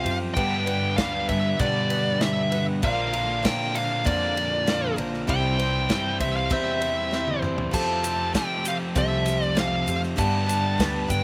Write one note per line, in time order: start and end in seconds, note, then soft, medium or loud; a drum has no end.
0.00 0.35 F3 loud
0.00 0.36 C4 loud
0.00 0.36 F4 medium
0.00 0.36 G4 medium
0.00 0.37 A4 loud
0.00 0.17 F5 loud
0.05 0.33 F#2 medium
0.05 0.36 C4 soft
0.05 0.37 F4 medium
0.05 ride medium
0.34 0.67 G2 medium
0.34 0.94 G2 loud
0.34 0.67 D3 medium
0.34 0.68 G3 medium
0.34 0.67 B3 medium
0.34 2.78 D4 medium
0.34 0.66 D4 medium
0.34 2.78 G4 medium
0.34 2.79 B4 medium
0.34 0.65 B4 medium
0.34 2.79 D5 medium
0.34 0.99 G5 loud
0.34 kick loud
0.34 ride loud
0.39 2.82 G4 loud
0.66 0.96 G3 soft
0.66 0.98 B3 medium
0.66 0.98 D4 medium
0.66 0.98 B4 medium
0.66 ride medium
0.96 1.29 G3 medium
0.96 1.30 B3 medium
0.96 1.28 D4 medium
0.96 1.26 F5 loud
0.96 kick medium
0.96 snare loud
0.96 ride loud
1.01 1.27 B4 medium
1.28 1.57 G2 loud
1.28 1.59 G3 soft
1.28 1.60 B3 soft
1.28 1.60 D4 medium
1.28 1.60 B4 medium
1.28 1.60 E5 loud
1.28 kick medium
1.28 ride medium
1.59 1.91 G2 medium
1.59 2.79 B2 loud
1.59 1.91 D3 loud
1.59 1.91 G3 medium
1.59 1.91 B3 medium
1.59 1.90 D4 medium
1.59 1.89 B4 loud
1.59 2.22 D5 medium
1.59 kick loud
1.59 ride loud
1.90 2.20 G3 soft
1.90 2.21 B3 soft
1.90 2.22 D4 medium
1.90 2.21 B4 medium
1.90 ride medium
2.21 2.52 G3 medium
2.21 2.53 B3 medium
2.21 2.52 D4 medium
2.21 2.50 B4 medium
2.21 2.65 E5 loud
2.21 snare loud
2.21 ride loud
2.51 2.82 G3 soft
2.51 2.83 B3 medium
2.51 2.82 D4 medium
2.51 2.83 B4 medium
2.51 ride medium
2.82 3.41 A#1 loud
2.82 3.13 A#2 medium
2.82 3.13 D3 medium
2.82 3.14 F3 medium
2.82 3.14 A#3 medium
2.82 5.25 D4 medium
2.82 3.13 D4 medium
2.82 5.25 F4 medium
2.82 5.28 F4 loud
2.82 3.12 A#4 medium
2.82 5.25 A#4 medium
2.82 5.26 D5 medium
2.82 3.47 F5 loud
2.82 kick loud
2.82 ride loud
3.13 3.41 F3 medium
3.13 3.42 A#3 medium
3.13 3.43 D4 medium
3.13 3.44 A#4 medium
3.13 ride medium
3.43 4.02 A#2 medium
3.43 3.74 F3 medium
3.43 3.75 A#3 medium
3.43 3.74 D4 medium
3.43 3.73 A#4 medium
3.43 3.76 G5 loud
3.43 kick medium
3.43 snare loud
3.43 ride loud
3.74 4.05 F3 soft
3.74 4.05 A#3 medium
3.74 4.05 D4 medium
3.74 4.05 A#4 medium
3.74 4.07 F5 loud
3.74 ride medium
4.05 4.94 F2 loud
4.05 4.36 A#2 medium
4.05 4.36 D3 medium
4.05 4.37 F3 medium
4.05 4.36 A#3 loud
4.05 4.35 D4 loud
4.05 4.34 A#4 loud
4.05 4.95 D5 medium
4.05 kick loud
4.05 ride loud
4.35 4.65 F3 soft
4.35 4.66 A#3 soft
4.35 4.67 D4 medium
4.35 4.67 A#4 medium
4.35 ride medium
4.66 4.98 F3 medium
4.66 4.97 A#3 medium
4.66 4.96 D4 medium
4.66 4.95 A#4 medium
4.66 snare loud
4.66 ride loud
4.96 5.25 A#1 medium
4.96 5.27 F3 medium
4.96 5.28 A#3 medium
4.96 5.28 D4 medium
4.96 5.28 A#4 medium
4.96 ride medium
5.14 snare soft
5.27 5.86 C2 loud
5.27 5.59 C3 medium
5.27 7.72 E3 loud
5.27 5.59 G3 medium
5.27 5.59 C4 medium
5.27 7.69 E4 medium
5.27 5.59 E4 medium
5.27 7.69 G4 medium
5.27 7.70 C5 medium
5.27 5.57 C5 medium
5.27 7.70 E5 medium
5.27 6.17 G5 loud
5.27 kick loud
5.27 ride loud
5.59 5.89 C4 soft
5.59 5.89 E4 soft
5.59 5.90 C5 medium
5.59 ride medium
5.89 6.17 G2 medium
5.89 6.20 G3 medium
5.89 6.21 C4 medium
5.89 6.20 E4 medium
5.89 6.19 C5 medium
5.89 kick medium
5.89 snare loud
5.89 ride loud
6.20 6.48 C2 loud
6.20 6.50 C4 soft
6.20 6.51 E4 medium
6.20 6.51 C5 medium
6.20 6.36 E5 loud
6.20 kick medium
6.20 ride medium
6.36 6.52 F5 medium
6.50 7.69 E2 loud
6.50 6.81 C3 medium
6.50 6.81 G3 medium
6.50 6.82 C4 medium
6.50 6.81 E4 loud
6.50 6.79 C5 loud
6.50 7.40 E5 medium
6.50 kick loud
6.50 ride loud
6.80 7.12 E4 medium
6.80 7.12 C5 medium
6.80 ride medium
7.11 7.42 G3 medium
7.11 7.43 C4 medium
7.11 7.43 E4 medium
7.11 7.41 C5 medium
7.11 snare medium
7.28 high tom medium
7.42 7.72 C4 medium
7.42 7.73 E4 medium
7.42 7.73 C5 medium
7.42 mid tom loud
7.58 floor tom loud
7.71 10.15 F2 loud
7.71 8.31 F2 loud
7.71 10.16 C3 loud
7.71 8.03 F3 medium
7.71 10.16 A3 loud
7.71 8.04 C4 medium
7.71 10.13 F4 medium
7.71 10.17 F4 loud
7.71 10.14 G4 medium
7.71 8.03 G4 medium
7.71 8.01 A4 loud
7.71 10.14 A4 medium
7.71 10.15 C5 medium
7.71 8.31 A5 loud
7.71 kick loud
7.71 crash loud
7.71 shaker medium
8.02 8.33 C4 soft
8.02 8.34 G4 soft
8.02 8.34 A4 medium
8.02 ride medium
8.02 shaker loud
8.33 8.64 F3 medium
8.33 8.92 F3 medium
8.33 8.65 C4 medium
8.33 8.66 G4 medium
8.33 8.63 A4 medium
8.33 8.64 G5 loud
8.33 kick medium
8.33 snare loud
8.33 ride loud
8.33 shaker medium
8.64 8.95 C4 soft
8.64 8.95 G4 medium
8.64 8.95 A4 medium
8.64 8.76 F5 loud
8.64 ride medium
8.64 shaker loud
8.95 9.83 C2 loud
8.95 9.26 F3 medium
8.95 9.26 C4 loud
8.95 9.26 G4 medium
8.95 9.24 A4 medium
8.95 9.45 E5 loud
8.95 kick loud
8.95 ride loud
8.95 shaker medium
9.25 9.54 C4 medium
9.25 9.55 G4 medium
9.25 9.56 A4 medium
9.25 ride medium
9.25 shaker medium
9.42 9.58 D5 loud
9.42 shaker soft
9.55 9.86 F3 medium
9.55 9.87 C4 medium
9.55 9.87 G4 medium
9.55 9.85 A4 medium
9.55 10.00 F5 loud
9.55 snare loud
9.55 ride loud
9.55 shaker medium
9.86 10.15 F2 medium
9.86 10.17 C4 medium
9.86 10.17 G4 medium
9.86 10.17 A4 medium
9.86 ride medium
9.86 shaker loud
10.04 snare soft
10.04 shaker soft
10.16 10.47 G2 medium
10.16 10.75 G2 loud
10.16 10.48 D3 medium
10.16 10.48 G3 medium
10.16 10.48 B3 medium
10.16 10.47 D4 medium
10.16 11.24 D4 medium
10.16 11.24 G4 loud
10.16 11.24 G4 medium
10.16 10.45 B4 medium
10.16 11.24 B4 medium
10.16 11.24 D5 medium
10.16 11.10 A5 loud
10.16 kick loud
10.16 ride loud
10.16 shaker medium
10.46 10.77 G3 soft
10.46 10.78 B3 soft
10.46 10.79 D4 medium
10.46 10.78 B4 medium
10.46 ride medium
10.46 shaker loud
10.78 11.07 D2 medium
10.78 11.09 G3 medium
10.78 11.08 B3 medium
10.78 11.07 D4 medium
10.78 11.06 B4 medium
10.78 kick medium
10.78 snare loud
10.78 ride loud
10.78 shaker medium
11.07 11.24 G2 loud
11.07 11.24 G3 soft
11.07 11.24 B3 medium
11.07 11.24 D4 medium
11.07 11.24 B4 medium
11.07 11.24 G5 loud
11.07 kick medium
11.07 ride medium
11.07 shaker medium